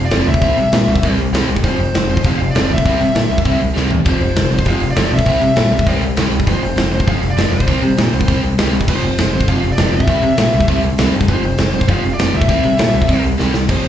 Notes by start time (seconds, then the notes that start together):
Already playing: F2 C3
0.05 D5
0.11 F1 F2 C3 F3, snare, open hi-hat
0.26 D2 F2 C3 E5, open hi-hat
0.34 kick
0.41 C2 C3 G3 C4, kick, open hi-hat
0.57 C3 G3, open hi-hat
0.72 A#2 C3 G3, snare, open hi-hat
0.88 C2 C3 G3, open hi-hat
0.96 kick
1.03 C2 C3 G3 C4, kick, open hi-hat
1.18 C2 C3 G3, open hi-hat
1.33 C2 C3 G3 C4, snare, open hi-hat
1.48 C2 C3 G3, open hi-hat
1.56 kick
1.64 F1 F2 C3 F3 C5, kick, open hi-hat
1.79 F1 F2 C3, open hi-hat
1.94 F1 F2 C3, snare, open hi-hat
2.09 F2 C3 C5, open hi-hat
2.17 kick
2.24 F1 F2 C3 F3 F5, kick, open hi-hat
2.40 F1 F2 C3, open hi-hat
2.51 D5
2.55 F1 F2 C3 F3, snare, open hi-hat
2.70 D2 F2 C3 E5, open hi-hat
2.78 kick
2.86 C2 C3 G3 C4, kick, open hi-hat
3.00 C3 G3, open hi-hat
3.15 A#2 C3 G3, snare, open hi-hat
3.30 C2 C3 G3, open hi-hat
3.38 kick
3.45 C2 C3 G3 C4, kick, open hi-hat
3.60 C2 C3 G3, open hi-hat
3.75 C2 C3 G3 C4, snare
3.90 E2 C3 G3, floor tom
4.05 F1 F2 C3 F3, kick, crash
4.09 C5
4.20 F1 F2 C3, open hi-hat
4.36 F1 F2 C3, snare, open hi-hat
4.51 F2 C3 C5, open hi-hat
4.59 kick
4.65 F1 F2 C3 F3 F5, kick, open hi-hat
4.80 F1 F2 C3, open hi-hat
4.91 D5
4.96 F1 F2 C3 F3, snare, open hi-hat
5.11 B1 F2 C3 E5, open hi-hat
5.19 kick
5.26 C2 C3 G3 C4, kick, open hi-hat
5.41 C3 G3, open hi-hat
5.56 A#2 C3 G3, snare, open hi-hat
5.71 C2 C3 G3, open hi-hat
5.79 kick
5.86 C2 C3 G3 C4, kick, open hi-hat
6.01 C2 C3 G3, open hi-hat
6.17 C2 C3 G3 C4, snare, open hi-hat
6.32 C2 C3 G3, open hi-hat
6.40 kick
6.46 F1 F2 C3 F3 C5, kick, open hi-hat
6.62 F1 F2 C3, open hi-hat
6.76 F1 F2 C3, snare, open hi-hat
6.92 F2 C3 C5, open hi-hat
7.00 kick
7.07 F1 F2 C3 F3 F5, kick, open hi-hat
7.21 F1 F2 C3, open hi-hat
7.31 D5
7.37 F1 F2 C3 F3, snare, open hi-hat
7.52 F1 F2 C3 C5, open hi-hat
7.60 kick
7.67 C2 C3 G3 C4, kick, open hi-hat
7.82 C3 G3, open hi-hat
7.98 A#2 C3 G3, snare, open hi-hat
8.13 C2 C3 G3, open hi-hat
8.21 kick
8.28 C2 C3 G3 C4, kick, open hi-hat
8.43 C2 C3 G3, open hi-hat
8.58 C2 C3 G3 C4, snare, open hi-hat
8.73 C2 C3 G3, open hi-hat
8.81 kick
8.88 F1 F2 C3 F3 C5, kick, crash
9.03 F1 F2 C3, open hi-hat
9.18 F1 F2 C3, snare, open hi-hat
9.33 F2 C3 C5, open hi-hat
9.41 kick
9.48 F1 F2 C3 F3 F5, kick, open hi-hat
9.62 F1 F2 C3, open hi-hat
9.72 D5
9.77 F1 F2 C3 F3, snare, open hi-hat
9.93 F1 F2 C3 E5, open hi-hat
10.00 kick
10.07 C2 C3 G3 C4, kick, open hi-hat
10.22 C3 G3, open hi-hat
10.37 A#2 C3 G3, snare, open hi-hat
10.53 C2 C3 G3, open hi-hat
10.60 kick
10.68 C2 C3 G3 C4, kick, open hi-hat
10.83 C2 C3 G3, open hi-hat
10.98 C2 C3 G3 C4, snare, open hi-hat
11.14 G2 C3 G3, open hi-hat
11.21 kick
11.28 F1 F2 C3 F3 C5, kick, open hi-hat
11.43 F1 F2 C3, open hi-hat
11.58 F1 F2 C3, snare, open hi-hat
11.73 F2 C3 C5, open hi-hat
11.81 kick
11.88 F1 F2 C3 F3 F5, kick, open hi-hat
12.03 F1 F2 C3, open hi-hat
12.14 D5
12.18 F1 F2 C3 F3, snare, open hi-hat
12.34 D2 F2 C3 E5, open hi-hat
12.42 kick
12.49 C2 C3 G3 C4, kick, open hi-hat
12.63 C3 G3, open hi-hat
12.78 A#2 C3 G3, snare, open hi-hat
12.94 C2 C3 G3, open hi-hat
13.02 kick
13.07 C2 C3 G3 C4, kick, open hi-hat
13.23 C2 C3 G3, open hi-hat
13.38 C2 C3 G3 C4, snare
13.53 C2 C3 G3, snare
13.69 F1 F2 C3 F3 C5, kick, crash
13.84 F1 F2 C3, open hi-hat